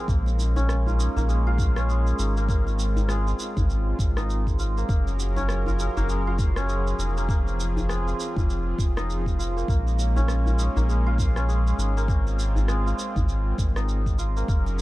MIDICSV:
0, 0, Header, 1, 6, 480
1, 0, Start_track
1, 0, Key_signature, -5, "minor"
1, 0, Tempo, 600000
1, 69, Time_signature, 4, 2, 24, 8
1, 11853, End_track
2, 0, Start_track
2, 0, Title_t, "Analog synth pad"
2, 0, Program_c, 0, 89
2, 67, Note_on_c, 0, 61, 87
2, 68, Note_on_c, 0, 56, 78
2, 71, Note_on_c, 0, 58, 72
2, 1969, Note_off_c, 0, 61, 0
2, 1971, Note_off_c, 0, 58, 0
2, 1991, Note_on_c, 0, 65, 85
2, 1992, Note_on_c, 0, 60, 69
2, 3877, Note_off_c, 0, 56, 0
2, 3891, Note_off_c, 0, 60, 0
2, 3891, Note_off_c, 0, 65, 0
2, 3917, Note_on_c, 0, 54, 75
2, 3917, Note_on_c, 0, 61, 69
2, 3917, Note_on_c, 0, 68, 70
2, 3918, Note_on_c, 0, 70, 89
2, 5814, Note_off_c, 0, 54, 0
2, 5814, Note_off_c, 0, 61, 0
2, 5814, Note_off_c, 0, 70, 0
2, 5832, Note_on_c, 0, 53, 81
2, 5832, Note_on_c, 0, 60, 73
2, 5834, Note_on_c, 0, 65, 75
2, 7721, Note_off_c, 0, 68, 0
2, 7731, Note_off_c, 0, 53, 0
2, 7731, Note_off_c, 0, 60, 0
2, 7732, Note_off_c, 0, 65, 0
2, 7746, Note_on_c, 0, 56, 75
2, 7746, Note_on_c, 0, 61, 83
2, 7748, Note_on_c, 0, 58, 71
2, 9648, Note_off_c, 0, 61, 0
2, 9649, Note_off_c, 0, 58, 0
2, 9668, Note_on_c, 0, 60, 77
2, 9668, Note_on_c, 0, 65, 82
2, 11556, Note_off_c, 0, 56, 0
2, 11569, Note_off_c, 0, 60, 0
2, 11569, Note_off_c, 0, 65, 0
2, 11584, Note_on_c, 0, 61, 77
2, 11585, Note_on_c, 0, 70, 86
2, 11586, Note_on_c, 0, 54, 77
2, 11586, Note_on_c, 0, 68, 68
2, 11853, Note_off_c, 0, 54, 0
2, 11853, Note_off_c, 0, 61, 0
2, 11853, Note_off_c, 0, 68, 0
2, 11853, Note_off_c, 0, 70, 0
2, 11853, End_track
3, 0, Start_track
3, 0, Title_t, "Santur"
3, 0, Program_c, 1, 15
3, 0, Note_on_c, 1, 56, 76
3, 0, Note_on_c, 1, 60, 96
3, 0, Note_on_c, 1, 63, 70
3, 0, Note_on_c, 1, 65, 70
3, 0, Note_on_c, 1, 70, 69
3, 68, Note_on_c, 1, 58, 80
3, 109, Note_off_c, 1, 56, 0
3, 450, Note_on_c, 1, 61, 90
3, 498, Note_off_c, 1, 60, 0
3, 687, Note_off_c, 1, 65, 0
3, 690, Note_on_c, 1, 65, 74
3, 784, Note_off_c, 1, 63, 0
3, 787, Note_on_c, 1, 63, 73
3, 928, Note_off_c, 1, 58, 0
3, 931, Note_on_c, 1, 58, 97
3, 1027, Note_on_c, 1, 56, 82
3, 1171, Note_off_c, 1, 65, 0
3, 1174, Note_on_c, 1, 65, 102
3, 1409, Note_off_c, 1, 61, 0
3, 1412, Note_on_c, 1, 61, 92
3, 1501, Note_off_c, 1, 56, 0
3, 1510, Note_on_c, 1, 56, 83
3, 1749, Note_off_c, 1, 63, 0
3, 1752, Note_on_c, 1, 63, 73
3, 1896, Note_off_c, 1, 58, 0
3, 1900, Note_on_c, 1, 58, 95
3, 1992, Note_off_c, 1, 58, 0
3, 1995, Note_on_c, 1, 58, 92
3, 2029, Note_off_c, 1, 56, 0
3, 2092, Note_off_c, 1, 70, 0
3, 2474, Note_on_c, 1, 56, 95
3, 2614, Note_off_c, 1, 65, 0
3, 2617, Note_on_c, 1, 65, 69
3, 3334, Note_off_c, 1, 63, 0
3, 3337, Note_on_c, 1, 63, 93
3, 3670, Note_off_c, 1, 65, 0
3, 3673, Note_on_c, 1, 65, 74
3, 3816, Note_off_c, 1, 58, 0
3, 3820, Note_on_c, 1, 58, 75
3, 3909, Note_off_c, 1, 58, 0
3, 3912, Note_on_c, 1, 58, 81
3, 3949, Note_off_c, 1, 56, 0
3, 4289, Note_off_c, 1, 61, 0
3, 4292, Note_on_c, 1, 61, 95
3, 4531, Note_off_c, 1, 65, 0
3, 4534, Note_on_c, 1, 65, 72
3, 4632, Note_off_c, 1, 63, 0
3, 4635, Note_on_c, 1, 63, 75
3, 4772, Note_off_c, 1, 58, 0
3, 4776, Note_on_c, 1, 58, 106
3, 4872, Note_on_c, 1, 56, 83
3, 5014, Note_off_c, 1, 65, 0
3, 5018, Note_on_c, 1, 65, 106
3, 5252, Note_off_c, 1, 61, 0
3, 5255, Note_on_c, 1, 61, 101
3, 5346, Note_off_c, 1, 56, 0
3, 5356, Note_on_c, 1, 56, 89
3, 5590, Note_off_c, 1, 63, 0
3, 5593, Note_on_c, 1, 63, 65
3, 5734, Note_off_c, 1, 58, 0
3, 5738, Note_on_c, 1, 58, 96
3, 5830, Note_off_c, 1, 58, 0
3, 5834, Note_on_c, 1, 58, 103
3, 5869, Note_off_c, 1, 56, 0
3, 6310, Note_on_c, 1, 56, 95
3, 6451, Note_off_c, 1, 65, 0
3, 6454, Note_on_c, 1, 65, 72
3, 7170, Note_off_c, 1, 63, 0
3, 7173, Note_on_c, 1, 63, 100
3, 7507, Note_off_c, 1, 65, 0
3, 7510, Note_on_c, 1, 65, 67
3, 7650, Note_off_c, 1, 58, 0
3, 7653, Note_on_c, 1, 58, 74
3, 7749, Note_off_c, 1, 58, 0
3, 7752, Note_on_c, 1, 58, 79
3, 7789, Note_off_c, 1, 56, 0
3, 8127, Note_off_c, 1, 61, 0
3, 8130, Note_on_c, 1, 61, 96
3, 8366, Note_off_c, 1, 65, 0
3, 8369, Note_on_c, 1, 65, 71
3, 8464, Note_off_c, 1, 63, 0
3, 8468, Note_on_c, 1, 63, 72
3, 8609, Note_off_c, 1, 58, 0
3, 8612, Note_on_c, 1, 58, 101
3, 8710, Note_on_c, 1, 56, 77
3, 8849, Note_off_c, 1, 65, 0
3, 8852, Note_on_c, 1, 65, 106
3, 9088, Note_off_c, 1, 61, 0
3, 9091, Note_on_c, 1, 61, 100
3, 9178, Note_off_c, 1, 56, 0
3, 9188, Note_on_c, 1, 56, 89
3, 9424, Note_off_c, 1, 63, 0
3, 9428, Note_on_c, 1, 63, 70
3, 9572, Note_off_c, 1, 58, 0
3, 9575, Note_on_c, 1, 58, 105
3, 9668, Note_off_c, 1, 58, 0
3, 9671, Note_on_c, 1, 58, 100
3, 9709, Note_off_c, 1, 56, 0
3, 10148, Note_on_c, 1, 56, 95
3, 10286, Note_off_c, 1, 65, 0
3, 10290, Note_on_c, 1, 65, 73
3, 11007, Note_off_c, 1, 63, 0
3, 11010, Note_on_c, 1, 63, 93
3, 11345, Note_off_c, 1, 65, 0
3, 11348, Note_on_c, 1, 65, 70
3, 11490, Note_off_c, 1, 58, 0
3, 11493, Note_on_c, 1, 58, 76
3, 11584, Note_off_c, 1, 58, 0
3, 11587, Note_on_c, 1, 58, 78
3, 11629, Note_off_c, 1, 56, 0
3, 11853, Note_off_c, 1, 58, 0
3, 11853, Note_off_c, 1, 61, 0
3, 11853, Note_off_c, 1, 63, 0
3, 11853, Note_off_c, 1, 65, 0
3, 11853, End_track
4, 0, Start_track
4, 0, Title_t, "Sub bass"
4, 0, Program_c, 2, 38
4, 65, Note_on_c, 2, 34, 95
4, 872, Note_off_c, 2, 34, 0
4, 931, Note_on_c, 2, 34, 102
4, 1709, Note_off_c, 2, 34, 0
4, 1752, Note_on_c, 2, 32, 97
4, 2671, Note_off_c, 2, 32, 0
4, 2855, Note_on_c, 2, 32, 99
4, 3151, Note_off_c, 2, 32, 0
4, 3192, Note_on_c, 2, 32, 80
4, 3871, Note_off_c, 2, 32, 0
4, 3911, Note_on_c, 2, 30, 97
4, 4715, Note_off_c, 2, 30, 0
4, 4775, Note_on_c, 2, 30, 101
4, 5551, Note_off_c, 2, 30, 0
4, 5589, Note_on_c, 2, 29, 96
4, 6510, Note_off_c, 2, 29, 0
4, 6692, Note_on_c, 2, 29, 102
4, 6990, Note_off_c, 2, 29, 0
4, 7028, Note_on_c, 2, 29, 80
4, 7709, Note_off_c, 2, 29, 0
4, 7748, Note_on_c, 2, 34, 95
4, 8554, Note_off_c, 2, 34, 0
4, 8610, Note_on_c, 2, 34, 107
4, 9389, Note_off_c, 2, 34, 0
4, 9426, Note_on_c, 2, 32, 93
4, 10348, Note_off_c, 2, 32, 0
4, 10529, Note_on_c, 2, 32, 105
4, 10828, Note_off_c, 2, 32, 0
4, 10866, Note_on_c, 2, 32, 77
4, 11548, Note_off_c, 2, 32, 0
4, 11586, Note_on_c, 2, 30, 96
4, 11853, Note_off_c, 2, 30, 0
4, 11853, End_track
5, 0, Start_track
5, 0, Title_t, "Djembe"
5, 210, Note_on_c, 9, 62, 49
5, 290, Note_off_c, 9, 62, 0
5, 305, Note_on_c, 9, 63, 64
5, 385, Note_off_c, 9, 63, 0
5, 448, Note_on_c, 9, 64, 85
5, 450, Note_on_c, 9, 62, 68
5, 528, Note_off_c, 9, 64, 0
5, 530, Note_off_c, 9, 62, 0
5, 694, Note_on_c, 9, 64, 70
5, 774, Note_off_c, 9, 64, 0
5, 934, Note_on_c, 9, 64, 83
5, 1014, Note_off_c, 9, 64, 0
5, 1265, Note_on_c, 9, 63, 81
5, 1345, Note_off_c, 9, 63, 0
5, 2135, Note_on_c, 9, 62, 51
5, 2215, Note_off_c, 9, 62, 0
5, 2372, Note_on_c, 9, 64, 84
5, 2375, Note_on_c, 9, 62, 62
5, 2452, Note_off_c, 9, 64, 0
5, 2455, Note_off_c, 9, 62, 0
5, 2710, Note_on_c, 9, 63, 34
5, 2790, Note_off_c, 9, 63, 0
5, 2859, Note_on_c, 9, 64, 98
5, 2939, Note_off_c, 9, 64, 0
5, 3336, Note_on_c, 9, 62, 37
5, 3341, Note_on_c, 9, 63, 75
5, 3416, Note_off_c, 9, 62, 0
5, 3421, Note_off_c, 9, 63, 0
5, 4059, Note_on_c, 9, 62, 49
5, 4139, Note_off_c, 9, 62, 0
5, 4153, Note_on_c, 9, 63, 55
5, 4233, Note_off_c, 9, 63, 0
5, 4292, Note_on_c, 9, 62, 63
5, 4292, Note_on_c, 9, 64, 85
5, 4372, Note_off_c, 9, 62, 0
5, 4372, Note_off_c, 9, 64, 0
5, 4531, Note_on_c, 9, 64, 81
5, 4611, Note_off_c, 9, 64, 0
5, 4780, Note_on_c, 9, 64, 98
5, 4860, Note_off_c, 9, 64, 0
5, 5107, Note_on_c, 9, 63, 72
5, 5187, Note_off_c, 9, 63, 0
5, 5973, Note_on_c, 9, 62, 43
5, 6053, Note_off_c, 9, 62, 0
5, 6215, Note_on_c, 9, 64, 96
5, 6220, Note_on_c, 9, 62, 56
5, 6295, Note_off_c, 9, 64, 0
5, 6300, Note_off_c, 9, 62, 0
5, 6552, Note_on_c, 9, 63, 36
5, 6632, Note_off_c, 9, 63, 0
5, 6691, Note_on_c, 9, 64, 94
5, 6771, Note_off_c, 9, 64, 0
5, 7172, Note_on_c, 9, 63, 73
5, 7178, Note_on_c, 9, 62, 36
5, 7252, Note_off_c, 9, 63, 0
5, 7258, Note_off_c, 9, 62, 0
5, 7894, Note_on_c, 9, 62, 41
5, 7974, Note_off_c, 9, 62, 0
5, 7988, Note_on_c, 9, 63, 54
5, 8068, Note_off_c, 9, 63, 0
5, 8132, Note_on_c, 9, 62, 60
5, 8133, Note_on_c, 9, 64, 96
5, 8212, Note_off_c, 9, 62, 0
5, 8213, Note_off_c, 9, 64, 0
5, 8368, Note_on_c, 9, 64, 76
5, 8448, Note_off_c, 9, 64, 0
5, 8608, Note_on_c, 9, 64, 87
5, 8688, Note_off_c, 9, 64, 0
5, 8947, Note_on_c, 9, 63, 76
5, 9027, Note_off_c, 9, 63, 0
5, 9815, Note_on_c, 9, 62, 54
5, 9895, Note_off_c, 9, 62, 0
5, 10048, Note_on_c, 9, 64, 90
5, 10052, Note_on_c, 9, 62, 56
5, 10128, Note_off_c, 9, 64, 0
5, 10132, Note_off_c, 9, 62, 0
5, 10387, Note_on_c, 9, 63, 34
5, 10467, Note_off_c, 9, 63, 0
5, 10528, Note_on_c, 9, 64, 90
5, 10608, Note_off_c, 9, 64, 0
5, 11010, Note_on_c, 9, 63, 70
5, 11012, Note_on_c, 9, 62, 32
5, 11090, Note_off_c, 9, 63, 0
5, 11092, Note_off_c, 9, 62, 0
5, 11731, Note_on_c, 9, 62, 54
5, 11811, Note_off_c, 9, 62, 0
5, 11853, End_track
6, 0, Start_track
6, 0, Title_t, "Drums"
6, 65, Note_on_c, 9, 36, 113
6, 73, Note_on_c, 9, 82, 40
6, 145, Note_off_c, 9, 36, 0
6, 153, Note_off_c, 9, 82, 0
6, 221, Note_on_c, 9, 82, 27
6, 301, Note_off_c, 9, 82, 0
6, 316, Note_on_c, 9, 82, 70
6, 396, Note_off_c, 9, 82, 0
6, 458, Note_on_c, 9, 82, 31
6, 538, Note_off_c, 9, 82, 0
6, 552, Note_on_c, 9, 37, 78
6, 558, Note_on_c, 9, 82, 42
6, 632, Note_off_c, 9, 37, 0
6, 638, Note_off_c, 9, 82, 0
6, 702, Note_on_c, 9, 82, 26
6, 782, Note_off_c, 9, 82, 0
6, 798, Note_on_c, 9, 82, 74
6, 878, Note_off_c, 9, 82, 0
6, 939, Note_on_c, 9, 82, 33
6, 1019, Note_off_c, 9, 82, 0
6, 1035, Note_on_c, 9, 82, 38
6, 1115, Note_off_c, 9, 82, 0
6, 1267, Note_on_c, 9, 36, 100
6, 1273, Note_on_c, 9, 82, 72
6, 1347, Note_off_c, 9, 36, 0
6, 1353, Note_off_c, 9, 82, 0
6, 1412, Note_on_c, 9, 37, 72
6, 1417, Note_on_c, 9, 82, 29
6, 1492, Note_off_c, 9, 37, 0
6, 1497, Note_off_c, 9, 82, 0
6, 1515, Note_on_c, 9, 82, 40
6, 1595, Note_off_c, 9, 82, 0
6, 1655, Note_on_c, 9, 82, 30
6, 1735, Note_off_c, 9, 82, 0
6, 1752, Note_on_c, 9, 82, 68
6, 1832, Note_off_c, 9, 82, 0
6, 1897, Note_on_c, 9, 82, 33
6, 1977, Note_off_c, 9, 82, 0
6, 1989, Note_on_c, 9, 36, 115
6, 1995, Note_on_c, 9, 82, 44
6, 2069, Note_off_c, 9, 36, 0
6, 2075, Note_off_c, 9, 82, 0
6, 2141, Note_on_c, 9, 82, 28
6, 2221, Note_off_c, 9, 82, 0
6, 2233, Note_on_c, 9, 82, 74
6, 2313, Note_off_c, 9, 82, 0
6, 2378, Note_on_c, 9, 82, 33
6, 2458, Note_off_c, 9, 82, 0
6, 2469, Note_on_c, 9, 37, 76
6, 2475, Note_on_c, 9, 82, 45
6, 2549, Note_off_c, 9, 37, 0
6, 2555, Note_off_c, 9, 82, 0
6, 2619, Note_on_c, 9, 82, 30
6, 2699, Note_off_c, 9, 82, 0
6, 2714, Note_on_c, 9, 82, 80
6, 2794, Note_off_c, 9, 82, 0
6, 2854, Note_on_c, 9, 36, 99
6, 2856, Note_on_c, 9, 82, 33
6, 2934, Note_off_c, 9, 36, 0
6, 2936, Note_off_c, 9, 82, 0
6, 2956, Note_on_c, 9, 82, 39
6, 3036, Note_off_c, 9, 82, 0
6, 3191, Note_on_c, 9, 36, 103
6, 3197, Note_on_c, 9, 82, 75
6, 3271, Note_off_c, 9, 36, 0
6, 3277, Note_off_c, 9, 82, 0
6, 3334, Note_on_c, 9, 37, 74
6, 3340, Note_on_c, 9, 82, 32
6, 3414, Note_off_c, 9, 37, 0
6, 3420, Note_off_c, 9, 82, 0
6, 3440, Note_on_c, 9, 82, 44
6, 3520, Note_off_c, 9, 82, 0
6, 3575, Note_on_c, 9, 36, 60
6, 3580, Note_on_c, 9, 82, 32
6, 3655, Note_off_c, 9, 36, 0
6, 3660, Note_off_c, 9, 82, 0
6, 3673, Note_on_c, 9, 82, 70
6, 3753, Note_off_c, 9, 82, 0
6, 3818, Note_on_c, 9, 82, 34
6, 3898, Note_off_c, 9, 82, 0
6, 3911, Note_on_c, 9, 36, 125
6, 3914, Note_on_c, 9, 82, 43
6, 3991, Note_off_c, 9, 36, 0
6, 3994, Note_off_c, 9, 82, 0
6, 4060, Note_on_c, 9, 82, 30
6, 4140, Note_off_c, 9, 82, 0
6, 4156, Note_on_c, 9, 82, 75
6, 4236, Note_off_c, 9, 82, 0
6, 4299, Note_on_c, 9, 82, 31
6, 4379, Note_off_c, 9, 82, 0
6, 4390, Note_on_c, 9, 37, 79
6, 4396, Note_on_c, 9, 82, 44
6, 4470, Note_off_c, 9, 37, 0
6, 4476, Note_off_c, 9, 82, 0
6, 4542, Note_on_c, 9, 82, 31
6, 4622, Note_off_c, 9, 82, 0
6, 4636, Note_on_c, 9, 82, 78
6, 4716, Note_off_c, 9, 82, 0
6, 4778, Note_on_c, 9, 82, 35
6, 4858, Note_off_c, 9, 82, 0
6, 4874, Note_on_c, 9, 82, 45
6, 4954, Note_off_c, 9, 82, 0
6, 5110, Note_on_c, 9, 36, 113
6, 5112, Note_on_c, 9, 82, 74
6, 5190, Note_off_c, 9, 36, 0
6, 5192, Note_off_c, 9, 82, 0
6, 5251, Note_on_c, 9, 37, 77
6, 5257, Note_on_c, 9, 82, 33
6, 5331, Note_off_c, 9, 37, 0
6, 5337, Note_off_c, 9, 82, 0
6, 5353, Note_on_c, 9, 82, 43
6, 5433, Note_off_c, 9, 82, 0
6, 5498, Note_on_c, 9, 82, 32
6, 5578, Note_off_c, 9, 82, 0
6, 5596, Note_on_c, 9, 82, 74
6, 5676, Note_off_c, 9, 82, 0
6, 5739, Note_on_c, 9, 82, 37
6, 5819, Note_off_c, 9, 82, 0
6, 5829, Note_on_c, 9, 36, 115
6, 5837, Note_on_c, 9, 82, 42
6, 5909, Note_off_c, 9, 36, 0
6, 5917, Note_off_c, 9, 82, 0
6, 5982, Note_on_c, 9, 82, 27
6, 6062, Note_off_c, 9, 82, 0
6, 6079, Note_on_c, 9, 82, 80
6, 6159, Note_off_c, 9, 82, 0
6, 6224, Note_on_c, 9, 82, 31
6, 6304, Note_off_c, 9, 82, 0
6, 6315, Note_on_c, 9, 37, 71
6, 6321, Note_on_c, 9, 82, 46
6, 6395, Note_off_c, 9, 37, 0
6, 6401, Note_off_c, 9, 82, 0
6, 6463, Note_on_c, 9, 82, 28
6, 6543, Note_off_c, 9, 82, 0
6, 6559, Note_on_c, 9, 82, 75
6, 6639, Note_off_c, 9, 82, 0
6, 6692, Note_on_c, 9, 36, 106
6, 6703, Note_on_c, 9, 82, 31
6, 6772, Note_off_c, 9, 36, 0
6, 6783, Note_off_c, 9, 82, 0
6, 6799, Note_on_c, 9, 82, 41
6, 6879, Note_off_c, 9, 82, 0
6, 7028, Note_on_c, 9, 36, 104
6, 7036, Note_on_c, 9, 82, 74
6, 7108, Note_off_c, 9, 36, 0
6, 7116, Note_off_c, 9, 82, 0
6, 7177, Note_on_c, 9, 37, 75
6, 7183, Note_on_c, 9, 82, 31
6, 7257, Note_off_c, 9, 37, 0
6, 7263, Note_off_c, 9, 82, 0
6, 7280, Note_on_c, 9, 82, 40
6, 7360, Note_off_c, 9, 82, 0
6, 7410, Note_on_c, 9, 36, 62
6, 7420, Note_on_c, 9, 82, 32
6, 7490, Note_off_c, 9, 36, 0
6, 7500, Note_off_c, 9, 82, 0
6, 7518, Note_on_c, 9, 82, 76
6, 7598, Note_off_c, 9, 82, 0
6, 7661, Note_on_c, 9, 82, 33
6, 7741, Note_off_c, 9, 82, 0
6, 7747, Note_on_c, 9, 36, 112
6, 7757, Note_on_c, 9, 82, 44
6, 7827, Note_off_c, 9, 36, 0
6, 7837, Note_off_c, 9, 82, 0
6, 7899, Note_on_c, 9, 82, 26
6, 7979, Note_off_c, 9, 82, 0
6, 7993, Note_on_c, 9, 82, 67
6, 8073, Note_off_c, 9, 82, 0
6, 8138, Note_on_c, 9, 82, 30
6, 8218, Note_off_c, 9, 82, 0
6, 8227, Note_on_c, 9, 37, 74
6, 8233, Note_on_c, 9, 82, 44
6, 8307, Note_off_c, 9, 37, 0
6, 8313, Note_off_c, 9, 82, 0
6, 8377, Note_on_c, 9, 82, 28
6, 8457, Note_off_c, 9, 82, 0
6, 8471, Note_on_c, 9, 82, 76
6, 8551, Note_off_c, 9, 82, 0
6, 8617, Note_on_c, 9, 82, 32
6, 8697, Note_off_c, 9, 82, 0
6, 8714, Note_on_c, 9, 82, 41
6, 8794, Note_off_c, 9, 82, 0
6, 8946, Note_on_c, 9, 36, 99
6, 8954, Note_on_c, 9, 82, 73
6, 9026, Note_off_c, 9, 36, 0
6, 9034, Note_off_c, 9, 82, 0
6, 9090, Note_on_c, 9, 37, 66
6, 9095, Note_on_c, 9, 82, 32
6, 9170, Note_off_c, 9, 37, 0
6, 9175, Note_off_c, 9, 82, 0
6, 9194, Note_on_c, 9, 82, 38
6, 9274, Note_off_c, 9, 82, 0
6, 9338, Note_on_c, 9, 82, 30
6, 9418, Note_off_c, 9, 82, 0
6, 9434, Note_on_c, 9, 82, 76
6, 9514, Note_off_c, 9, 82, 0
6, 9579, Note_on_c, 9, 82, 33
6, 9659, Note_off_c, 9, 82, 0
6, 9666, Note_on_c, 9, 36, 110
6, 9673, Note_on_c, 9, 82, 41
6, 9746, Note_off_c, 9, 36, 0
6, 9753, Note_off_c, 9, 82, 0
6, 9818, Note_on_c, 9, 82, 27
6, 9898, Note_off_c, 9, 82, 0
6, 9914, Note_on_c, 9, 82, 74
6, 9994, Note_off_c, 9, 82, 0
6, 10056, Note_on_c, 9, 82, 30
6, 10136, Note_off_c, 9, 82, 0
6, 10147, Note_on_c, 9, 37, 72
6, 10152, Note_on_c, 9, 82, 42
6, 10227, Note_off_c, 9, 37, 0
6, 10232, Note_off_c, 9, 82, 0
6, 10299, Note_on_c, 9, 82, 28
6, 10379, Note_off_c, 9, 82, 0
6, 10391, Note_on_c, 9, 82, 71
6, 10471, Note_off_c, 9, 82, 0
6, 10530, Note_on_c, 9, 36, 90
6, 10534, Note_on_c, 9, 82, 30
6, 10610, Note_off_c, 9, 36, 0
6, 10614, Note_off_c, 9, 82, 0
6, 10630, Note_on_c, 9, 82, 40
6, 10710, Note_off_c, 9, 82, 0
6, 10866, Note_on_c, 9, 36, 92
6, 10870, Note_on_c, 9, 82, 68
6, 10946, Note_off_c, 9, 36, 0
6, 10950, Note_off_c, 9, 82, 0
6, 11010, Note_on_c, 9, 37, 74
6, 11015, Note_on_c, 9, 82, 30
6, 11090, Note_off_c, 9, 37, 0
6, 11095, Note_off_c, 9, 82, 0
6, 11109, Note_on_c, 9, 82, 39
6, 11189, Note_off_c, 9, 82, 0
6, 11251, Note_on_c, 9, 36, 59
6, 11254, Note_on_c, 9, 82, 30
6, 11331, Note_off_c, 9, 36, 0
6, 11334, Note_off_c, 9, 82, 0
6, 11350, Note_on_c, 9, 82, 68
6, 11430, Note_off_c, 9, 82, 0
6, 11495, Note_on_c, 9, 82, 33
6, 11575, Note_off_c, 9, 82, 0
6, 11587, Note_on_c, 9, 36, 110
6, 11593, Note_on_c, 9, 82, 40
6, 11667, Note_off_c, 9, 36, 0
6, 11673, Note_off_c, 9, 82, 0
6, 11735, Note_on_c, 9, 82, 26
6, 11815, Note_off_c, 9, 82, 0
6, 11853, End_track
0, 0, End_of_file